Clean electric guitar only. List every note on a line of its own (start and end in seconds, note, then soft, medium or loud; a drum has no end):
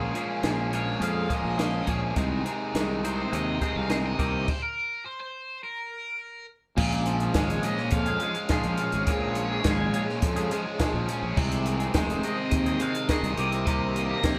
0.00 0.13 A#2 medium
0.00 0.13 F3 medium
0.00 0.15 G#3 loud
0.00 0.14 C#4 loud
0.00 0.15 G#4 medium
0.14 0.42 A#2 medium
0.14 0.42 F3 medium
0.14 0.43 G#3 medium
0.14 0.43 C#4 medium
0.14 0.44 G#4 medium
0.43 0.71 A#2 medium
0.43 0.72 F3 medium
0.43 0.72 G#3 medium
0.43 0.72 C#4 medium
0.43 0.72 G#4 medium
0.72 0.98 A#2 medium
0.72 0.99 F3 medium
0.72 1.00 G#3 medium
0.72 1.00 C#4 medium
0.72 1.00 G#4 medium
0.99 1.28 A#2 medium
0.99 1.28 F3 medium
0.99 1.29 G#3 medium
0.99 1.29 C#4 medium
0.99 1.29 G#4 loud
1.29 1.56 A#2 medium
1.29 1.56 F3 medium
1.29 1.57 G#3 medium
1.29 1.57 C#4 medium
1.29 1.57 G#4 medium
1.57 1.86 A#2 medium
1.57 1.86 F3 medium
1.57 1.86 G#3 medium
1.57 1.86 C#4 medium
1.57 1.87 G#4 medium
1.87 2.15 A#2 medium
1.87 2.15 F3 medium
1.87 2.15 G#3 medium
1.87 2.15 C#4 medium
1.87 2.16 G#4 medium
2.15 2.43 C3 loud
2.15 2.44 D#3 medium
2.15 2.44 G#3 medium
2.15 2.44 C4 loud
2.15 2.45 G#4 loud
2.44 2.73 C3 medium
2.44 2.73 D#3 medium
2.44 2.74 G#3 medium
2.44 2.74 C4 medium
2.44 2.74 G#4 medium
2.74 3.02 C3 medium
2.74 3.03 D#3 medium
2.74 3.03 G#3 medium
2.74 3.03 C4 medium
2.74 3.03 G#4 loud
3.03 3.30 C3 medium
3.03 3.30 D#3 medium
3.03 3.31 G#3 medium
3.03 3.31 C4 medium
3.03 3.31 G#4 medium
3.31 3.59 C3 medium
3.31 3.60 D#3 medium
3.31 3.60 G#3 medium
3.31 3.61 C4 loud
3.31 3.61 G#4 medium
3.61 3.87 C3 medium
3.61 3.88 D#3 medium
3.61 3.88 G#3 medium
3.61 3.89 C4 medium
3.61 3.89 G#4 medium
3.89 4.17 C3 medium
3.89 4.17 D#3 medium
3.89 4.17 G#3 medium
3.89 4.17 C4 medium
3.89 4.17 G#4 medium
4.18 4.46 C3 medium
4.18 4.46 D#3 loud
4.18 4.46 A#3 medium
4.18 4.46 C4 loud
4.18 4.46 G4 medium
6.77 7.35 A#2 loud
6.77 7.35 F3 loud
6.77 7.22 G#3 loud
6.77 7.21 C#4 loud
6.77 7.20 G#4 loud
7.20 7.35 G#3 medium
7.20 7.36 C#4 medium
7.20 7.36 G#4 medium
7.35 8.10 A#2 loud
7.35 7.63 F3 loud
7.35 7.65 G#3 loud
7.35 7.65 C#4 loud
7.35 7.66 G#4 loud
7.64 7.79 F3 medium
7.64 7.79 G#3 medium
7.64 7.78 C#4 medium
7.64 7.79 G#4 medium
7.79 muted clean electric guitar stroke medium
8.07 8.21 G#3 medium
8.07 8.21 C#4 medium
8.07 8.22 G#4 medium
8.21 8.35 F3 medium
8.21 8.36 G#3 medium
8.21 8.35 C#4 medium
8.21 8.36 G#4 medium
8.36 muted clean electric guitar stroke medium
8.50 8.93 A#2 medium
8.50 8.94 F3 loud
8.50 8.66 G#3 loud
8.50 8.65 C#4 medium
8.50 8.64 G#4 loud
8.64 8.95 G#3 medium
8.64 8.93 C#4 medium
8.64 8.93 G#4 medium
8.93 9.08 G#3 medium
8.93 9.08 C#4 medium
8.93 9.09 G#4 medium
9.07 9.63 A#2 loud
9.07 9.64 F3 medium
9.07 9.52 G#3 loud
9.07 9.51 C#4 loud
9.07 9.50 G#4 loud
9.51 9.64 G#3 medium
9.51 9.65 C#4 medium
9.51 9.66 G#4 medium
9.64 10.22 A#2 loud
9.64 9.93 F3 loud
9.64 9.94 G#3 loud
9.64 9.94 C#4 loud
9.64 9.95 G#4 loud
9.94 10.08 F3 medium
9.94 10.08 G#3 medium
9.94 10.07 C#4 medium
9.94 10.07 G#4 medium
10.08 muted clean electric guitar stroke medium
10.36 10.50 G#3 medium
10.36 10.51 C#4 medium
10.36 10.52 G#4 medium
10.51 10.66 F3 medium
10.51 10.66 G#3 medium
10.51 10.65 C#4 medium
10.51 10.65 G#4 medium
10.66 muted clean electric guitar stroke medium
10.79 11.23 A#2 loud
10.79 11.23 F3 loud
10.79 10.94 G#3 medium
10.79 10.93 C#4 loud
10.79 10.92 G#4 loud
10.93 11.23 G#3 medium
10.93 11.23 C#4 medium
10.93 11.21 G#4 medium
11.23 11.36 G#3 medium
11.23 11.36 C#4 medium
11.23 11.36 G#4 medium
11.36 11.94 C3 loud
11.36 11.93 D#3 medium
11.36 11.80 G#3 loud
11.36 11.80 C4 loud
11.36 11.78 G#4 loud
11.80 11.94 G#3 medium
11.80 11.95 C4 medium
11.80 11.95 G#4 medium
11.94 13.09 C3 loud
11.94 12.22 D#3 loud
11.94 12.22 G#3 loud
11.94 12.24 C4 loud
11.94 12.24 G#4 loud
12.23 12.38 D#3 medium
12.23 12.37 G#3 medium
12.23 12.37 C4 medium
12.23 12.37 G#4 medium
12.38 muted clean electric guitar stroke medium
12.66 12.80 G#3 medium
12.66 12.81 C4 medium
12.66 12.82 G#4 medium
12.81 12.95 D#3 medium
12.81 12.95 G#3 medium
12.81 12.95 C4 medium
12.81 12.94 G#4 medium
12.96 muted clean electric guitar stroke soft
13.09 13.35 C3 loud
13.09 13.36 D#3 loud
13.09 13.24 G#3 loud
13.09 13.23 C4 loud
13.09 13.22 G#4 loud
13.23 13.37 G#3 medium
13.23 13.37 C4 medium
13.23 13.36 G#4 medium
13.37 13.64 C3 medium
13.37 13.64 D#3 loud
13.37 13.54 A#3 medium
13.37 13.53 C4 loud
13.37 13.51 G4 loud
13.52 13.66 A#3 medium
13.52 13.66 C4 medium
13.52 13.66 G4 medium
13.65 14.22 C3 loud
13.65 14.22 D#3 loud
13.65 14.11 A#3 loud
13.65 14.09 C4 loud
13.65 14.08 G4 loud
14.10 14.24 A#3 medium
14.10 14.24 C4 medium
14.10 14.24 G4 medium
14.23 14.39 C3 medium
14.23 14.39 D#3 loud
14.23 14.39 A#3 loud
14.23 14.39 C4 loud
14.23 14.39 G4 loud